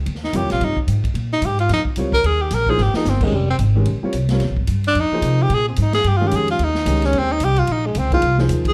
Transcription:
0.06 upright bass D#2, ride
0.15 snare
0.24 tenor saxophone D#4, snare
0.33 upright bass F2, upright piano C3 G3 F4 A#4 C#5, tenor saxophone G4, hi-hat pedal, ride
0.43 upright bass D#2
0.50 upright bass A#1, tenor saxophone F4, snare, ride
0.60 upright bass G2, tenor saxophone D#4, ride
0.77 muted upright bass stroke, kick
0.87 upright bass G#2, hi-hat pedal, ride
1.04 kick, ride
1.14 upright bass A#2, ride
1.33 tenor saxophone D#4
1.41 upright bass G#2, hi-hat pedal, ride
1.46 tenor saxophone G4
1.59 tenor saxophone F4, ride
1.69 upright bass F2, snare, ride
1.73 tenor saxophone D#4
1.85 muted upright bass stroke, kick
1.96 upright bass C#2, upright piano G3 C4 F4 A#4 C#5, hi-hat pedal, ride
2.12 tenor saxophone A#4, kick
2.23 upright bass D#2, tenor saxophone G#4, ride
2.42 tenor saxophone G4
2.51 upright bass A#1, tenor saxophone A#4, snare, hi-hat pedal, ride
2.67 upright piano F3 A#3 D#4 G#4 C5, tenor saxophone G#4, kick
2.78 upright bass G#1, snare
2.83 tenor saxophone G4
2.94 upright piano F3 A#3 D#4 G#4 A#4, tenor saxophone D#4, muted upright bass stroke, snare
3.05 upright bass G1, snare, hi-hat pedal
3.09 tenor saxophone C4
3.21 upright piano D#3 G#3 C#4 G4 A#4, tenor saxophone G#3, kick, crash
3.31 upright bass F1
3.36 tenor saxophone G3
3.50 tenor saxophone C4
3.59 upright bass G#1, hi-hat pedal, ride
3.75 upright piano D#3 G#3 C#4 G4 A#4
3.85 upright bass A#1, ride
4.02 upright piano G3 C4 F4 A#4 C#5, muted upright bass stroke
4.13 upright bass C2, hi-hat pedal, ride
4.29 upright piano G3 C4 F4 A#4 C#5, snare, ride
4.40 upright bass D#2, snare, ride
4.49 upright bass A#1
4.57 upright bass G#1, kick
4.67 upright bass G2, hi-hat pedal, ride
4.84 tenor saxophone D4, ride
4.95 upright bass F2, ride
5.00 tenor saxophone D#4
5.11 upright piano F3 A#3 D#4 G#4 C5, muted upright bass stroke
5.22 upright bass C3, hi-hat pedal, ride
5.42 tenor saxophone G4
5.50 upright bass A#2, ride
5.54 tenor saxophone G#4
5.69 tenor saxophone C4
5.76 upright bass G#2, hi-hat pedal, ride
5.82 tenor saxophone D#4
5.93 tenor saxophone G#4, snare, ride
6.04 upright bass G2, tenor saxophone G4, ride
6.17 upright piano D#3 G#3, tenor saxophone F4
6.21 upright piano C#4 G4 A#4
6.27 tenor saxophone G4, hi-hat pedal, ride
6.32 upright bass F2, tenor saxophone G#4
6.48 tenor saxophone F4, ride
6.59 upright bass D#2, ride
6.64 tenor saxophone D#4
6.75 snare
6.86 upright bass C#2, upright piano D#3 G#3 C#4 G4 A#4, hi-hat pedal, ride
6.95 snare
7.02 tenor saxophone C#4, snare, ride
7.13 upright bass D#2, ride
7.19 tenor saxophone C4
7.32 tenor saxophone D#4
7.40 upright bass C2, hi-hat pedal, ride
7.44 tenor saxophone G4
7.56 tenor saxophone F4, ride
7.67 upright bass A#1, ride
7.72 tenor saxophone D#4
7.86 tenor saxophone G#3
7.95 upright bass C#2, tenor saxophone C4, hi-hat pedal, ride
8.11 upright piano F3 A#3 D#4 G#4 C5, tenor saxophone F4, kick, ride
8.22 upright bass C2, ride
8.38 upright piano F3 A#3 D#4 G#4 C5, snare
8.49 upright bass D#2, hi-hat pedal, ride
8.65 tenor saxophone G#4, kick, ride

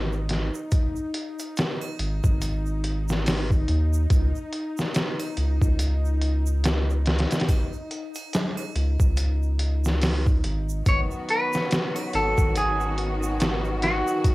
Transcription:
Already playing: analog synth bass G#1, synth drone D#4
0.12 shaker
0.29 snare, closed hi-hat
0.54 shaker
0.71 kick, closed hi-hat, shaker
0.96 shaker
1.14 closed hi-hat
1.39 closed hi-hat, shaker
1.57 snare, closed hi-hat, shaker
1.81 triangle, shaker
1.99 analog synth bass G#1, closed hi-hat
2.24 analog synth bass G#1, kick, shaker
2.42 closed hi-hat, shaker
2.66 shaker
2.84 closed hi-hat
3.08 snare, shaker
3.26 snare, open hi-hat, shaker
3.51 kick, shaker
3.68 analog synth bass D#2, closed hi-hat
3.93 shaker
4.10 analog synth bass C#2, kick, closed hi-hat, shaker
4.35 shaker
4.53 closed hi-hat
4.77 snare, shaker
4.94 snare, closed hi-hat, shaker
5.20 closed hi-hat, triangle, shaker
5.37 analog synth bass C#2, closed hi-hat
5.62 analog synth bass C#2, kick, shaker
5.79 closed hi-hat, shaker
6.05 shaker
6.22 closed hi-hat
6.46 shaker
6.64 snare, closed hi-hat, shaker
6.90 shaker
7.06 snare, closed hi-hat
7.19 snare, closed hi-hat
7.31 snare, closed hi-hat, shaker
7.40 snare, closed hi-hat
7.48 kick, closed hi-hat, triangle, shaker
7.73 shaker
7.91 closed hi-hat
8.14 closed hi-hat, triangle, shaker
8.33 snare, closed hi-hat, shaker
8.57 triangle, shaker
8.76 analog synth bass C#2, closed hi-hat
9.00 analog synth bass C#2, kick, shaker
9.17 closed hi-hat, shaker
9.43 shaker
9.59 closed hi-hat
9.84 snare, shaker
10.02 snare, open hi-hat, shaker
10.26 kick, shaker
10.44 analog synth bass G#1, closed hi-hat
10.69 shaker
10.86 analog synth bass G#1, string section D#3 F#3 B3 F#4, synth drone C#4, clean electric guitar C#5, kick, closed hi-hat, shaker
11.11 shaker
11.29 clean electric guitar B4, closed hi-hat
11.53 snare, shaker
11.71 snare, closed hi-hat, shaker
11.96 closed hi-hat, triangle, shaker
12.13 analog synth bass G#1, clean electric guitar A4, closed hi-hat
12.38 analog synth bass G#1, kick, shaker
12.56 clean electric guitar G#4, closed hi-hat, shaker
12.81 shaker
12.98 closed hi-hat
13.23 shaker
13.40 snare, closed hi-hat, shaker
13.65 shaker
13.82 clean electric guitar F#4, snare, closed hi-hat
14.07 shaker
14.24 kick, closed hi-hat, shaker

